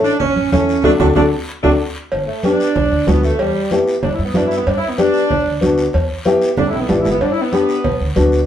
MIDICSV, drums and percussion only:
0, 0, Header, 1, 2, 480
1, 0, Start_track
1, 0, Tempo, 318302
1, 1276, Time_signature, 4, 2, 24, 8
1, 12762, End_track
2, 0, Start_track
2, 0, Title_t, "Drums"
2, 68, Note_on_c, 9, 73, 69
2, 218, Note_off_c, 9, 73, 0
2, 304, Note_on_c, 9, 64, 84
2, 312, Note_on_c, 9, 56, 77
2, 313, Note_on_c, 9, 74, 68
2, 455, Note_off_c, 9, 64, 0
2, 462, Note_off_c, 9, 56, 0
2, 464, Note_off_c, 9, 74, 0
2, 548, Note_on_c, 9, 63, 74
2, 699, Note_off_c, 9, 63, 0
2, 790, Note_on_c, 9, 56, 65
2, 790, Note_on_c, 9, 63, 91
2, 790, Note_on_c, 9, 64, 77
2, 800, Note_on_c, 9, 73, 66
2, 941, Note_off_c, 9, 56, 0
2, 941, Note_off_c, 9, 63, 0
2, 941, Note_off_c, 9, 64, 0
2, 951, Note_off_c, 9, 73, 0
2, 1042, Note_on_c, 9, 73, 72
2, 1193, Note_off_c, 9, 73, 0
2, 1263, Note_on_c, 9, 64, 95
2, 1269, Note_on_c, 9, 65, 95
2, 1281, Note_on_c, 9, 74, 100
2, 1414, Note_off_c, 9, 64, 0
2, 1420, Note_off_c, 9, 65, 0
2, 1432, Note_off_c, 9, 74, 0
2, 1503, Note_on_c, 9, 65, 90
2, 1506, Note_on_c, 9, 64, 106
2, 1519, Note_on_c, 9, 74, 89
2, 1654, Note_off_c, 9, 65, 0
2, 1657, Note_off_c, 9, 64, 0
2, 1670, Note_off_c, 9, 74, 0
2, 1742, Note_on_c, 9, 64, 85
2, 1752, Note_on_c, 9, 74, 105
2, 1756, Note_on_c, 9, 65, 102
2, 1893, Note_off_c, 9, 64, 0
2, 1903, Note_off_c, 9, 74, 0
2, 1907, Note_off_c, 9, 65, 0
2, 2468, Note_on_c, 9, 64, 89
2, 2474, Note_on_c, 9, 65, 85
2, 2487, Note_on_c, 9, 74, 92
2, 2619, Note_off_c, 9, 64, 0
2, 2625, Note_off_c, 9, 65, 0
2, 2637, Note_off_c, 9, 74, 0
2, 3192, Note_on_c, 9, 56, 108
2, 3193, Note_on_c, 9, 63, 37
2, 3209, Note_on_c, 9, 74, 75
2, 3342, Note_off_c, 9, 56, 0
2, 3344, Note_off_c, 9, 63, 0
2, 3360, Note_off_c, 9, 74, 0
2, 3670, Note_on_c, 9, 63, 77
2, 3680, Note_on_c, 9, 56, 67
2, 3683, Note_on_c, 9, 73, 65
2, 3821, Note_off_c, 9, 63, 0
2, 3830, Note_off_c, 9, 56, 0
2, 3834, Note_off_c, 9, 73, 0
2, 3925, Note_on_c, 9, 73, 82
2, 4075, Note_off_c, 9, 73, 0
2, 4154, Note_on_c, 9, 56, 83
2, 4160, Note_on_c, 9, 63, 34
2, 4160, Note_on_c, 9, 64, 92
2, 4164, Note_on_c, 9, 74, 74
2, 4304, Note_off_c, 9, 56, 0
2, 4311, Note_off_c, 9, 63, 0
2, 4311, Note_off_c, 9, 64, 0
2, 4315, Note_off_c, 9, 74, 0
2, 4632, Note_on_c, 9, 63, 89
2, 4640, Note_on_c, 9, 56, 69
2, 4640, Note_on_c, 9, 66, 65
2, 4641, Note_on_c, 9, 73, 70
2, 4783, Note_off_c, 9, 63, 0
2, 4790, Note_off_c, 9, 56, 0
2, 4790, Note_off_c, 9, 66, 0
2, 4792, Note_off_c, 9, 73, 0
2, 4877, Note_on_c, 9, 73, 65
2, 5028, Note_off_c, 9, 73, 0
2, 5113, Note_on_c, 9, 56, 107
2, 5120, Note_on_c, 9, 63, 37
2, 5125, Note_on_c, 9, 74, 77
2, 5264, Note_off_c, 9, 56, 0
2, 5271, Note_off_c, 9, 63, 0
2, 5275, Note_off_c, 9, 74, 0
2, 5591, Note_on_c, 9, 56, 67
2, 5596, Note_on_c, 9, 63, 77
2, 5601, Note_on_c, 9, 73, 70
2, 5742, Note_off_c, 9, 56, 0
2, 5747, Note_off_c, 9, 63, 0
2, 5752, Note_off_c, 9, 73, 0
2, 5844, Note_on_c, 9, 73, 73
2, 5994, Note_off_c, 9, 73, 0
2, 6074, Note_on_c, 9, 56, 85
2, 6074, Note_on_c, 9, 63, 38
2, 6074, Note_on_c, 9, 64, 88
2, 6078, Note_on_c, 9, 74, 77
2, 6224, Note_off_c, 9, 63, 0
2, 6224, Note_off_c, 9, 64, 0
2, 6225, Note_off_c, 9, 56, 0
2, 6229, Note_off_c, 9, 74, 0
2, 6547, Note_on_c, 9, 63, 97
2, 6560, Note_on_c, 9, 73, 66
2, 6563, Note_on_c, 9, 56, 67
2, 6698, Note_off_c, 9, 63, 0
2, 6711, Note_off_c, 9, 73, 0
2, 6714, Note_off_c, 9, 56, 0
2, 6803, Note_on_c, 9, 73, 64
2, 6954, Note_off_c, 9, 73, 0
2, 7035, Note_on_c, 9, 63, 37
2, 7041, Note_on_c, 9, 56, 105
2, 7041, Note_on_c, 9, 74, 74
2, 7186, Note_off_c, 9, 63, 0
2, 7192, Note_off_c, 9, 56, 0
2, 7192, Note_off_c, 9, 74, 0
2, 7516, Note_on_c, 9, 63, 76
2, 7516, Note_on_c, 9, 73, 68
2, 7524, Note_on_c, 9, 56, 66
2, 7667, Note_off_c, 9, 63, 0
2, 7667, Note_off_c, 9, 73, 0
2, 7675, Note_off_c, 9, 56, 0
2, 7751, Note_on_c, 9, 73, 73
2, 7902, Note_off_c, 9, 73, 0
2, 7988, Note_on_c, 9, 74, 73
2, 8000, Note_on_c, 9, 63, 37
2, 8000, Note_on_c, 9, 64, 83
2, 8005, Note_on_c, 9, 56, 83
2, 8139, Note_off_c, 9, 74, 0
2, 8151, Note_off_c, 9, 63, 0
2, 8151, Note_off_c, 9, 64, 0
2, 8156, Note_off_c, 9, 56, 0
2, 8474, Note_on_c, 9, 63, 86
2, 8481, Note_on_c, 9, 73, 70
2, 8484, Note_on_c, 9, 56, 71
2, 8624, Note_off_c, 9, 63, 0
2, 8631, Note_off_c, 9, 73, 0
2, 8635, Note_off_c, 9, 56, 0
2, 8712, Note_on_c, 9, 73, 72
2, 8862, Note_off_c, 9, 73, 0
2, 8946, Note_on_c, 9, 74, 69
2, 8959, Note_on_c, 9, 56, 103
2, 8959, Note_on_c, 9, 63, 35
2, 9097, Note_off_c, 9, 74, 0
2, 9110, Note_off_c, 9, 56, 0
2, 9110, Note_off_c, 9, 63, 0
2, 9428, Note_on_c, 9, 73, 76
2, 9437, Note_on_c, 9, 56, 72
2, 9437, Note_on_c, 9, 63, 80
2, 9579, Note_off_c, 9, 73, 0
2, 9588, Note_off_c, 9, 56, 0
2, 9588, Note_off_c, 9, 63, 0
2, 9674, Note_on_c, 9, 73, 80
2, 9825, Note_off_c, 9, 73, 0
2, 9902, Note_on_c, 9, 74, 72
2, 9913, Note_on_c, 9, 63, 32
2, 9913, Note_on_c, 9, 64, 94
2, 9916, Note_on_c, 9, 56, 75
2, 9916, Note_on_c, 9, 65, 83
2, 10052, Note_off_c, 9, 74, 0
2, 10063, Note_off_c, 9, 63, 0
2, 10063, Note_off_c, 9, 64, 0
2, 10067, Note_off_c, 9, 56, 0
2, 10067, Note_off_c, 9, 65, 0
2, 10151, Note_on_c, 9, 65, 67
2, 10302, Note_off_c, 9, 65, 0
2, 10387, Note_on_c, 9, 56, 61
2, 10387, Note_on_c, 9, 66, 75
2, 10388, Note_on_c, 9, 63, 89
2, 10390, Note_on_c, 9, 73, 63
2, 10538, Note_off_c, 9, 56, 0
2, 10538, Note_off_c, 9, 66, 0
2, 10539, Note_off_c, 9, 63, 0
2, 10541, Note_off_c, 9, 73, 0
2, 10625, Note_on_c, 9, 66, 71
2, 10636, Note_on_c, 9, 73, 79
2, 10776, Note_off_c, 9, 66, 0
2, 10787, Note_off_c, 9, 73, 0
2, 10870, Note_on_c, 9, 63, 34
2, 10873, Note_on_c, 9, 56, 106
2, 10875, Note_on_c, 9, 74, 66
2, 11021, Note_off_c, 9, 63, 0
2, 11024, Note_off_c, 9, 56, 0
2, 11026, Note_off_c, 9, 74, 0
2, 11348, Note_on_c, 9, 63, 78
2, 11349, Note_on_c, 9, 56, 70
2, 11352, Note_on_c, 9, 73, 74
2, 11498, Note_off_c, 9, 63, 0
2, 11499, Note_off_c, 9, 56, 0
2, 11503, Note_off_c, 9, 73, 0
2, 11594, Note_on_c, 9, 73, 73
2, 11745, Note_off_c, 9, 73, 0
2, 11828, Note_on_c, 9, 56, 93
2, 11832, Note_on_c, 9, 63, 34
2, 11832, Note_on_c, 9, 64, 76
2, 11834, Note_on_c, 9, 74, 68
2, 11979, Note_off_c, 9, 56, 0
2, 11983, Note_off_c, 9, 63, 0
2, 11983, Note_off_c, 9, 64, 0
2, 11985, Note_off_c, 9, 74, 0
2, 12303, Note_on_c, 9, 63, 92
2, 12304, Note_on_c, 9, 56, 71
2, 12314, Note_on_c, 9, 73, 75
2, 12454, Note_off_c, 9, 63, 0
2, 12455, Note_off_c, 9, 56, 0
2, 12465, Note_off_c, 9, 73, 0
2, 12549, Note_on_c, 9, 73, 66
2, 12700, Note_off_c, 9, 73, 0
2, 12762, End_track
0, 0, End_of_file